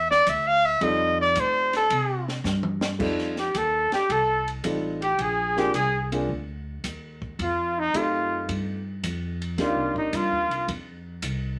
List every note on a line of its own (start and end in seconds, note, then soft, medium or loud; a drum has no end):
0.00 0.25 E2 medium
0.00 0.10 E5 loud
0.11 0.31 D5 loud
0.11 snare soft
0.27 0.80 D2 medium
0.27 0.49 E5 loud
0.27 kick soft
0.27 hi-hat pedal medium
0.27 ride medium
0.47 0.67 F5 loud
0.65 0.85 E5 loud
0.81 1.34 F2 loud
0.81 1.91 G3 medium
0.81 1.90 C4 medium
0.81 1.91 D#4 medium
0.81 1.91 F4 medium
0.81 1.91 A4 medium
0.81 1.20 D#5 medium
0.81 kick soft
0.81 ride medium
1.21 1.41 D5 loud
1.36 1.89 A2 medium
1.36 kick soft
1.36 hi-hat pedal medium
1.36 ride medium
1.40 1.76 C5 medium
1.73 2.26 A4 loud
1.73 snare soft
1.73 ride soft
1.90 2.44 C3 medium
1.90 kick soft
1.90 ride medium
2.28 snare medium
2.44 2.98 G2 loud
2.44 snare medium
2.44 hi-hat pedal medium
2.63 mid tom medium
2.81 snare loud
2.99 3.53 F2 medium
2.99 3.33 G3 medium
2.99 3.34 C4 medium
2.99 3.34 D#4 medium
2.99 3.34 F4 medium
2.99 3.34 A4 medium
2.99 kick medium
2.99 crash medium
3.18 snare soft
3.36 3.59 G4 medium
3.36 3.58 G4 medium
3.36 snare soft
3.55 3.90 D#2 medium
3.55 3.92 A4 medium
3.55 3.93 A4 medium
3.55 kick soft
3.55 hi-hat pedal medium
3.55 ride medium
3.92 4.12 G4 medium
3.92 4.13 G4 medium
3.92 muted upright bass stroke soft
3.92 snare medium
3.92 ride soft
4.09 4.63 C2 medium
4.09 4.48 A4 medium
4.09 4.49 A4 medium
4.09 kick soft
4.09 ride medium
4.48 ride soft
4.63 5.18 A1 medium
4.63 4.98 G3 medium
4.63 4.98 C4 medium
4.63 4.99 D#4 medium
4.63 4.99 F4 medium
4.63 4.99 A4 medium
4.63 kick soft
4.63 hi-hat pedal medium
4.63 ride medium
5.01 5.23 G4 medium
5.01 ride soft
5.19 5.72 A#1 medium
5.19 5.61 G#4 medium
5.19 5.60 G#4 medium
5.19 kick soft
5.19 ride medium
5.57 5.72 A#3 medium
5.57 5.73 C4 medium
5.57 5.73 D4 medium
5.57 5.73 F4 medium
5.57 5.75 G4 medium
5.57 5.73 G#4 medium
5.57 snare soft
5.74 6.27 C2 medium
5.74 5.98 G#4 medium
5.74 6.10 G#4 medium
5.74 kick soft
5.74 hi-hat pedal medium
5.74 ride medium
6.12 6.27 A#3 medium
6.12 6.27 C4 medium
6.12 6.28 D4 medium
6.12 6.28 F4 medium
6.12 6.28 G#4 medium
6.12 ride medium
6.29 6.82 D2 medium
6.29 kick soft
6.84 7.37 D#2 medium
6.84 kick soft
6.84 hi-hat pedal medium
6.84 ride medium
7.22 kick medium
7.39 7.92 F2 medium
7.39 7.80 F4 medium
7.39 7.81 F4 medium
7.39 kick soft
7.39 ride medium
7.78 7.98 D#4 medium
7.93 8.47 F#2 medium
7.93 8.79 A3 medium
7.93 8.79 C4 medium
7.93 8.79 D#4 medium
7.93 8.79 F4 medium
7.93 8.50 F4 medium
7.93 8.80 G4 medium
7.93 kick soft
7.93 hi-hat pedal soft
7.93 ride medium
8.48 9.02 G2 medium
8.48 kick soft
8.48 ride medium
9.03 9.57 F2 loud
9.03 kick soft
9.03 hi-hat pedal medium
9.03 ride medium
9.42 ride soft
9.58 9.75 D#2 medium
9.58 10.68 A#3 medium
9.58 10.68 C4 medium
9.58 10.68 D4 medium
9.58 10.68 D#4 medium
9.58 9.95 F4 medium
9.58 10.69 G4 medium
9.58 kick soft
9.58 snare soft
9.58 ride medium
9.62 9.96 F4 medium
9.75 9.93 C2 medium
9.93 10.11 A#1 medium
9.93 kick medium
9.98 10.17 D#4 medium
10.13 10.32 G2 medium
10.13 10.69 F4 medium
10.13 kick soft
10.13 hi-hat pedal medium
10.13 ride medium
10.30 10.47 D#2 medium
10.48 10.66 C2 medium
10.48 ride soft
10.68 11.21 F2 medium
10.68 kick soft
10.68 ride medium
11.22 11.59 C2 medium
11.22 kick soft
11.22 hi-hat pedal medium
11.22 ride medium